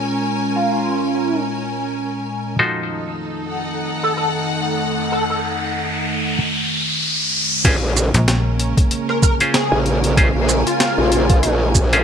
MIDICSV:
0, 0, Header, 1, 9, 480
1, 0, Start_track
1, 0, Key_signature, -5, "minor"
1, 0, Tempo, 631579
1, 52, Time_signature, 4, 2, 24, 8
1, 9150, End_track
2, 0, Start_track
2, 0, Title_t, "String section"
2, 0, Program_c, 0, 48
2, 0, Note_on_c, 0, 61, 73
2, 0, Note_on_c, 0, 70, 72
2, 0, Note_on_c, 0, 80, 75
2, 1973, Note_off_c, 0, 70, 0
2, 1974, Note_on_c, 0, 63, 68
2, 1975, Note_off_c, 0, 80, 0
2, 1976, Note_off_c, 0, 61, 0
2, 2155, Note_on_c, 0, 69, 73
2, 2652, Note_on_c, 0, 78, 85
2, 4850, Note_off_c, 0, 78, 0
2, 4853, Note_off_c, 0, 63, 0
2, 4854, Note_off_c, 0, 69, 0
2, 5811, Note_on_c, 0, 61, 82
2, 6043, Note_on_c, 0, 70, 80
2, 7182, Note_on_c, 0, 80, 71
2, 9150, Note_off_c, 0, 61, 0
2, 9150, Note_off_c, 0, 70, 0
2, 9150, Note_off_c, 0, 80, 0
2, 9150, End_track
3, 0, Start_track
3, 0, Title_t, "Analog synth lead"
3, 0, Program_c, 1, 81
3, 424, Note_on_c, 1, 65, 92
3, 1091, Note_off_c, 1, 65, 0
3, 3065, Note_on_c, 1, 69, 86
3, 3133, Note_off_c, 1, 69, 0
3, 3168, Note_on_c, 1, 69, 81
3, 3257, Note_off_c, 1, 69, 0
3, 3890, Note_on_c, 1, 69, 83
3, 3978, Note_off_c, 1, 69, 0
3, 4028, Note_on_c, 1, 69, 70
3, 4094, Note_off_c, 1, 69, 0
3, 6908, Note_on_c, 1, 70, 85
3, 6974, Note_off_c, 1, 70, 0
3, 7013, Note_on_c, 1, 70, 80
3, 7099, Note_off_c, 1, 70, 0
3, 7251, Note_on_c, 1, 68, 96
3, 7426, Note_off_c, 1, 68, 0
3, 8104, Note_on_c, 1, 65, 97
3, 8772, Note_off_c, 1, 65, 0
3, 9150, End_track
4, 0, Start_track
4, 0, Title_t, "Clav"
4, 0, Program_c, 2, 7
4, 0, Note_on_c, 2, 46, 67
4, 0, Note_on_c, 2, 61, 63
4, 0, Note_on_c, 2, 65, 62
4, 0, Note_on_c, 2, 68, 63
4, 0, Note_on_c, 2, 72, 77
4, 1946, Note_off_c, 2, 61, 0
4, 1946, Note_off_c, 2, 68, 0
4, 1947, Note_off_c, 2, 46, 0
4, 1947, Note_off_c, 2, 65, 0
4, 1947, Note_off_c, 2, 72, 0
4, 1969, Note_on_c, 2, 66, 65
4, 1970, Note_on_c, 2, 53, 69
4, 1970, Note_on_c, 2, 69, 65
4, 1970, Note_on_c, 2, 72, 76
4, 1971, Note_on_c, 2, 63, 66
4, 4851, Note_off_c, 2, 53, 0
4, 4851, Note_off_c, 2, 63, 0
4, 4851, Note_off_c, 2, 66, 0
4, 4851, Note_off_c, 2, 69, 0
4, 4851, Note_off_c, 2, 72, 0
4, 5813, Note_on_c, 2, 61, 86
4, 5813, Note_on_c, 2, 65, 80
4, 5813, Note_on_c, 2, 72, 99
4, 5814, Note_on_c, 2, 68, 81
4, 5897, Note_off_c, 2, 61, 0
4, 5897, Note_off_c, 2, 65, 0
4, 5897, Note_off_c, 2, 68, 0
4, 5897, Note_off_c, 2, 72, 0
4, 7149, Note_on_c, 2, 68, 73
4, 7150, Note_on_c, 2, 65, 77
4, 7151, Note_on_c, 2, 61, 84
4, 7151, Note_on_c, 2, 72, 95
4, 7251, Note_off_c, 2, 65, 0
4, 7251, Note_off_c, 2, 68, 0
4, 7252, Note_off_c, 2, 61, 0
4, 7252, Note_off_c, 2, 72, 0
4, 7732, Note_on_c, 2, 61, 86
4, 7732, Note_on_c, 2, 68, 80
4, 7733, Note_on_c, 2, 65, 82
4, 7733, Note_on_c, 2, 72, 99
4, 7816, Note_off_c, 2, 61, 0
4, 7816, Note_off_c, 2, 68, 0
4, 7817, Note_off_c, 2, 65, 0
4, 7817, Note_off_c, 2, 72, 0
4, 9067, Note_on_c, 2, 61, 83
4, 9067, Note_on_c, 2, 65, 79
4, 9067, Note_on_c, 2, 72, 91
4, 9068, Note_on_c, 2, 68, 78
4, 9150, Note_off_c, 2, 61, 0
4, 9150, Note_off_c, 2, 65, 0
4, 9150, Note_off_c, 2, 68, 0
4, 9150, Note_off_c, 2, 72, 0
4, 9150, End_track
5, 0, Start_track
5, 0, Title_t, "Ambient pad"
5, 0, Program_c, 3, 92
5, 0, Note_on_c, 3, 46, 78
5, 0, Note_on_c, 3, 56, 71
5, 0, Note_on_c, 3, 61, 86
5, 1942, Note_off_c, 3, 56, 0
5, 1943, Note_off_c, 3, 46, 0
5, 1943, Note_off_c, 3, 61, 0
5, 1968, Note_on_c, 3, 41, 77
5, 1969, Note_on_c, 3, 51, 73
5, 1970, Note_on_c, 3, 57, 86
5, 5779, Note_off_c, 3, 41, 0
5, 5780, Note_off_c, 3, 51, 0
5, 5780, Note_off_c, 3, 57, 0
5, 5816, Note_on_c, 3, 56, 76
5, 5819, Note_on_c, 3, 49, 86
5, 5819, Note_on_c, 3, 58, 90
5, 9150, Note_off_c, 3, 49, 0
5, 9150, Note_off_c, 3, 56, 0
5, 9150, Note_off_c, 3, 58, 0
5, 9150, End_track
6, 0, Start_track
6, 0, Title_t, "FM bass"
6, 0, Program_c, 4, 39
6, 6190, Note_on_c, 4, 34, 106
6, 6647, Note_off_c, 4, 34, 0
6, 9150, End_track
7, 0, Start_track
7, 0, Title_t, "Wobble bass"
7, 0, Program_c, 5, 39
7, 5812, Note_on_c, 5, 34, 100
7, 6167, Note_off_c, 5, 34, 0
7, 7386, Note_on_c, 5, 34, 101
7, 7845, Note_off_c, 5, 34, 0
7, 7865, Note_on_c, 5, 34, 95
7, 8085, Note_off_c, 5, 34, 0
7, 8345, Note_on_c, 5, 34, 100
7, 8674, Note_off_c, 5, 34, 0
7, 8689, Note_on_c, 5, 34, 93
7, 9150, Note_off_c, 5, 34, 0
7, 9150, End_track
8, 0, Start_track
8, 0, Title_t, "Riser"
8, 0, Program_c, 6, 103
8, 1969, Note_on_c, 6, 60, 70
8, 5810, Note_off_c, 6, 60, 0
8, 9150, End_track
9, 0, Start_track
9, 0, Title_t, "Drums"
9, 5812, Note_on_c, 9, 36, 116
9, 5813, Note_on_c, 9, 42, 71
9, 5813, Note_on_c, 9, 49, 106
9, 5888, Note_off_c, 9, 36, 0
9, 5889, Note_off_c, 9, 42, 0
9, 5889, Note_off_c, 9, 49, 0
9, 6054, Note_on_c, 9, 37, 42
9, 6054, Note_on_c, 9, 82, 62
9, 6130, Note_off_c, 9, 37, 0
9, 6130, Note_off_c, 9, 82, 0
9, 6189, Note_on_c, 9, 42, 58
9, 6265, Note_off_c, 9, 42, 0
9, 6292, Note_on_c, 9, 38, 118
9, 6292, Note_on_c, 9, 42, 73
9, 6368, Note_off_c, 9, 38, 0
9, 6368, Note_off_c, 9, 42, 0
9, 6532, Note_on_c, 9, 42, 64
9, 6608, Note_off_c, 9, 42, 0
9, 6668, Note_on_c, 9, 36, 108
9, 6670, Note_on_c, 9, 42, 57
9, 6744, Note_off_c, 9, 36, 0
9, 6746, Note_off_c, 9, 42, 0
9, 6772, Note_on_c, 9, 42, 72
9, 6848, Note_off_c, 9, 42, 0
9, 6909, Note_on_c, 9, 37, 45
9, 6985, Note_off_c, 9, 37, 0
9, 7011, Note_on_c, 9, 36, 108
9, 7012, Note_on_c, 9, 82, 64
9, 7087, Note_off_c, 9, 36, 0
9, 7088, Note_off_c, 9, 82, 0
9, 7147, Note_on_c, 9, 42, 53
9, 7223, Note_off_c, 9, 42, 0
9, 7251, Note_on_c, 9, 38, 120
9, 7251, Note_on_c, 9, 42, 67
9, 7327, Note_off_c, 9, 38, 0
9, 7327, Note_off_c, 9, 42, 0
9, 7492, Note_on_c, 9, 42, 40
9, 7568, Note_off_c, 9, 42, 0
9, 7629, Note_on_c, 9, 42, 58
9, 7705, Note_off_c, 9, 42, 0
9, 7730, Note_on_c, 9, 36, 114
9, 7732, Note_on_c, 9, 42, 71
9, 7806, Note_off_c, 9, 36, 0
9, 7808, Note_off_c, 9, 42, 0
9, 7971, Note_on_c, 9, 37, 41
9, 7971, Note_on_c, 9, 82, 65
9, 8047, Note_off_c, 9, 37, 0
9, 8047, Note_off_c, 9, 82, 0
9, 8107, Note_on_c, 9, 42, 57
9, 8183, Note_off_c, 9, 42, 0
9, 8209, Note_on_c, 9, 38, 125
9, 8209, Note_on_c, 9, 42, 72
9, 8285, Note_off_c, 9, 38, 0
9, 8285, Note_off_c, 9, 42, 0
9, 8449, Note_on_c, 9, 42, 62
9, 8525, Note_off_c, 9, 42, 0
9, 8584, Note_on_c, 9, 42, 58
9, 8586, Note_on_c, 9, 36, 108
9, 8660, Note_off_c, 9, 42, 0
9, 8662, Note_off_c, 9, 36, 0
9, 8687, Note_on_c, 9, 37, 52
9, 8687, Note_on_c, 9, 42, 69
9, 8763, Note_off_c, 9, 37, 0
9, 8763, Note_off_c, 9, 42, 0
9, 8928, Note_on_c, 9, 82, 63
9, 8929, Note_on_c, 9, 36, 68
9, 9004, Note_off_c, 9, 82, 0
9, 9005, Note_off_c, 9, 36, 0
9, 9065, Note_on_c, 9, 42, 55
9, 9141, Note_off_c, 9, 42, 0
9, 9150, End_track
0, 0, End_of_file